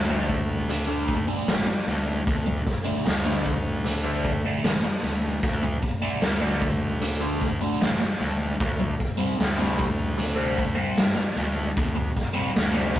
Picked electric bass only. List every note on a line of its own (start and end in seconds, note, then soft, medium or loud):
0.00 1.24 D2 medium
1.48 1.65 A1 loud
1.88 2.21 D2 medium
2.27 2.61 D2 medium
3.06 4.40 D2 medium
4.64 4.81 A1 medium
5.03 5.37 D2 medium
5.43 5.77 D2 medium
6.22 7.56 D2 medium
7.81 7.98 A1 medium
8.20 8.54 D2 medium
8.60 8.94 D2 medium
9.40 10.74 D2 medium
10.97 11.14 G2 medium
11.36 11.70 D2 medium
11.77 12.11 D2 medium
12.56 13.00 D2 medium